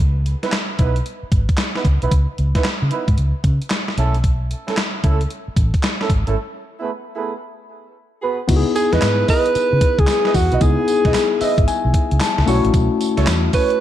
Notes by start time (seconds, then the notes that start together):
0.00 C#2
0.26 closed hi-hat
0.43 B3 D#4 E4 B4, snare, closed hi-hat
0.52 snare, clap, closed hi-hat
0.79 B1 B3 D#4 E4 B4, kick, closed hi-hat
0.96 closed hi-hat
1.06 closed hi-hat
1.23 muted fingered electric bass stroke
1.32 G#1, kick, closed hi-hat
1.49 kick, closed hi-hat
1.58 snare, clap, closed hi-hat
1.75 B3 D#4 E4 B4, snare
1.85 C#2, kick, closed hi-hat
2.02 B1 B3 D#4 E4 B4, closed hi-hat
2.11 C#2, kick, closed hi-hat
2.38 C#2, closed hi-hat
2.55 B3 D#4 E4 B4, kick, snare, closed hi-hat
2.64 muted fingered electric bass stroke, snare, clap, closed hi-hat
2.82 C#3
2.91 B3 D#4 E4 B4, closed hi-hat
3.08 G#2, kick, closed hi-hat
3.18 C#2, closed hi-hat
3.44 C#3, kick, closed hi-hat
3.62 closed hi-hat
3.70 snare, clap, closed hi-hat
3.88 snare
3.97 B1 A3 C#4 E4 A4, closed hi-hat
4.14 closed hi-hat
4.24 kick, closed hi-hat
4.51 closed hi-hat
4.67 A3 C#4 E4 A4, snare, closed hi-hat
4.77 snare, clap, closed hi-hat
5.03 C#2 A3 C#4 E4 A4, kick, closed hi-hat
5.21 closed hi-hat
5.30 closed hi-hat
5.48 muted fingered electric bass stroke
5.57 A1, kick, closed hi-hat
5.74 kick, closed hi-hat
5.83 snare, clap, closed hi-hat
6.00 A3 C#4 E4 A4, snare
6.10 G#1, kick, closed hi-hat
6.26 G#1 A3 C#4 E4 A4, closed hi-hat
6.80 A3 B3 E4 G#4 A4 B4
7.15 A3 B3 E4 G#4 A4 B4
8.21 B3 F#4 G#4 B4
8.48 C#2 B3 D#4 E4 F#4, kick, closed hi-hat, crash, tambourine
8.56 G#4
8.76 G#4, closed hi-hat, tambourine
8.92 E2 D#4 E4 B4 D#5, snare, closed hi-hat
9.02 G#2, snare, clap, closed hi-hat, tambourine
9.28 D#4 E4 B4 D#5, kick, open hi-hat, tambourine
9.46 closed hi-hat
9.55 muted fingered electric bass stroke, closed hi-hat, tambourine
9.73 C#3
9.81 kick, closed hi-hat
9.99 C#2 G#4, kick, closed hi-hat
10.07 snare, clap, closed hi-hat, tambourine
10.25 D#4 E4 B4 D#5, snare
10.34 E2 F#4, kick, open hi-hat, tambourine
10.52 B1 D#4 E4 B4 D#5, closed hi-hat
10.61 C#2 B3 D#4 E4 G#4, kick, closed hi-hat, tambourine
10.88 closed hi-hat, tambourine
11.05 B1 D#4 E4 B4 D#5, kick, snare, closed hi-hat
11.14 snare, clap, closed hi-hat, tambourine
11.41 D#4 E4 B4 D#5 E5, muted fingered electric bass stroke, open hi-hat, tambourine
11.58 G#1, kick, closed hi-hat
11.68 G#5, closed hi-hat, tambourine
11.85 B1
11.94 kick, closed hi-hat
12.11 C#2, closed hi-hat
12.20 A5, snare, clap, closed hi-hat, tambourine
12.38 C#2, snare
12.46 B1 A3 C#4 E4 F#4 A4 C#5, open hi-hat, tambourine
12.65 A1, closed hi-hat
12.74 B1, kick, closed hi-hat, tambourine
13.01 closed hi-hat, tambourine
13.17 C#2 C#4 E4 A4 C#5, snare, closed hi-hat
13.27 E2, snare, clap, closed hi-hat, tambourine
13.53 C#4 E4 A4 B4 C#5, kick, open hi-hat, tambourine
13.70 closed hi-hat